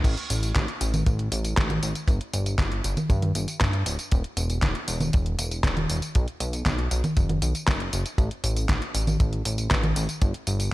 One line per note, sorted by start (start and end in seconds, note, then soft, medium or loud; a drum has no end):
0.04 0.16 A1 loud
0.04 kick loud
0.04 closed hi-hat medium
0.04 tambourine soft
0.04 crash loud
0.17 closed hi-hat soft
0.30 0.53 A1 medium
0.30 closed hi-hat medium
0.30 tambourine medium
0.43 closed hi-hat soft
0.43 tambourine soft
0.56 0.67 A1 medium
0.56 kick loud
0.56 snare loud
0.56 clap loud
0.56 closed hi-hat medium
0.56 tambourine soft
0.68 closed hi-hat soft
0.81 1.04 A1 loud
0.81 closed hi-hat loud
0.81 tambourine medium
0.94 closed hi-hat soft
0.94 tambourine soft
0.94 high conga medium
1.06 1.29 A1 medium
1.06 kick loud
1.06 closed hi-hat medium
1.06 tambourine soft
1.19 closed hi-hat soft
1.32 1.54 A1 medium
1.32 closed hi-hat medium
1.32 tambourine medium
1.45 closed hi-hat soft
1.45 tambourine soft
1.57 1.80 A1 medium
1.57 kick loud
1.57 snare loud
1.57 clap loud
1.57 closed hi-hat medium
1.57 tambourine soft
1.70 closed hi-hat soft
1.70 high conga medium
1.83 1.94 A1 medium
1.83 closed hi-hat loud
1.83 tambourine medium
1.95 closed hi-hat soft
1.95 tambourine soft
2.08 2.19 G1 medium
2.08 kick loud
2.08 closed hi-hat medium
2.08 tambourine soft
2.21 closed hi-hat soft
2.33 2.56 G1 medium
2.33 closed hi-hat medium
2.33 tambourine medium
2.46 closed hi-hat soft
2.46 tambourine soft
2.58 2.81 G1 medium
2.58 kick loud
2.58 snare loud
2.58 clap loud
2.58 closed hi-hat medium
2.58 tambourine soft
2.72 closed hi-hat soft
2.84 2.96 G1 medium
2.84 closed hi-hat loud
2.84 tambourine medium
2.97 closed hi-hat soft
2.97 tambourine soft
2.97 high conga medium
3.10 3.32 G2 medium
3.10 kick loud
3.10 closed hi-hat medium
3.10 tambourine soft
3.22 closed hi-hat soft
3.22 high conga medium
3.35 3.47 G1 medium
3.35 closed hi-hat medium
3.35 tambourine medium
3.48 closed hi-hat soft
3.48 tambourine soft
3.61 3.84 G2 medium
3.61 kick loud
3.61 snare loud
3.61 clap loud
3.61 closed hi-hat medium
3.61 tambourine soft
3.73 closed hi-hat soft
3.86 3.97 D1 loud
3.86 closed hi-hat medium
3.86 tambourine medium
3.99 closed hi-hat soft
3.99 tambourine soft
4.11 4.23 E1 loud
4.11 kick loud
4.11 closed hi-hat medium
4.11 tambourine soft
4.24 closed hi-hat soft
4.37 4.60 E1 medium
4.37 closed hi-hat medium
4.37 tambourine medium
4.50 closed hi-hat soft
4.50 tambourine soft
4.62 4.74 E1 medium
4.62 kick loud
4.62 snare loud
4.62 clap loud
4.62 closed hi-hat medium
4.62 tambourine soft
4.75 closed hi-hat soft
4.88 5.10 E1 medium
4.88 closed hi-hat medium
4.88 tambourine medium
5.00 closed hi-hat soft
5.00 tambourine soft
5.00 high conga medium
5.13 5.36 E1 medium
5.13 kick loud
5.13 closed hi-hat medium
5.13 tambourine soft
5.26 closed hi-hat soft
5.39 5.61 E1 medium
5.39 closed hi-hat medium
5.39 tambourine medium
5.51 closed hi-hat soft
5.51 tambourine soft
5.64 5.86 E1 medium
5.64 kick loud
5.64 snare loud
5.64 clap loud
5.64 closed hi-hat medium
5.64 tambourine soft
5.77 closed hi-hat soft
5.77 high conga medium
5.89 6.01 E1 medium
5.89 closed hi-hat medium
5.89 tambourine medium
6.02 closed hi-hat soft
6.02 tambourine soft
6.15 6.26 B1 medium
6.15 kick loud
6.15 closed hi-hat medium
6.15 tambourine soft
6.28 closed hi-hat soft
6.40 6.63 B1 medium
6.40 closed hi-hat medium
6.40 tambourine medium
6.53 closed hi-hat soft
6.53 tambourine soft
6.66 6.88 B1 medium
6.66 kick loud
6.66 snare loud
6.66 clap loud
6.66 closed hi-hat medium
6.66 tambourine soft
6.79 closed hi-hat soft
6.91 7.03 B1 medium
6.91 closed hi-hat medium
6.91 tambourine medium
7.04 closed hi-hat soft
7.04 tambourine soft
7.04 high conga medium
7.17 7.39 F#1 medium
7.17 kick loud
7.17 closed hi-hat medium
7.17 tambourine soft
7.29 closed hi-hat soft
7.29 high conga medium
7.42 7.53 B1 medium
7.42 closed hi-hat medium
7.42 tambourine medium
7.55 closed hi-hat soft
7.55 tambourine soft
7.68 7.90 F#1 medium
7.68 kick loud
7.68 snare loud
7.68 clap loud
7.68 closed hi-hat medium
7.68 tambourine soft
7.80 closed hi-hat soft
7.93 8.04 F#1 medium
7.93 closed hi-hat medium
7.93 tambourine medium
8.06 closed hi-hat soft
8.06 tambourine soft
8.18 8.30 A1 loud
8.18 kick loud
8.18 closed hi-hat medium
8.18 tambourine soft
8.31 closed hi-hat soft
8.44 8.66 A1 medium
8.44 closed hi-hat medium
8.44 tambourine medium
8.56 closed hi-hat soft
8.56 tambourine soft
8.69 8.80 A1 medium
8.69 kick loud
8.69 snare loud
8.69 clap loud
8.69 closed hi-hat medium
8.69 tambourine soft
8.82 closed hi-hat soft
8.95 9.17 A1 medium
8.95 closed hi-hat medium
8.95 tambourine medium
9.07 closed hi-hat soft
9.07 tambourine soft
9.07 high conga medium
9.20 9.43 A1 medium
9.20 kick loud
9.20 closed hi-hat medium
9.20 tambourine soft
9.33 closed hi-hat soft
9.45 9.68 A1 medium
9.45 closed hi-hat medium
9.45 tambourine medium
9.58 closed hi-hat soft
9.58 tambourine soft
9.71 9.93 A1 medium
9.71 kick loud
9.71 snare loud
9.71 clap loud
9.71 closed hi-hat medium
9.71 tambourine soft
9.83 closed hi-hat soft
9.83 high conga medium
9.96 10.08 A1 medium
9.96 closed hi-hat medium
9.96 tambourine medium
10.09 closed hi-hat soft
10.09 tambourine soft
10.22 10.33 G1 medium
10.22 kick loud
10.22 closed hi-hat medium
10.22 tambourine soft
10.34 closed hi-hat soft
10.47 10.70 G1 medium
10.47 closed hi-hat medium
10.47 tambourine medium
10.60 closed hi-hat soft
10.60 tambourine soft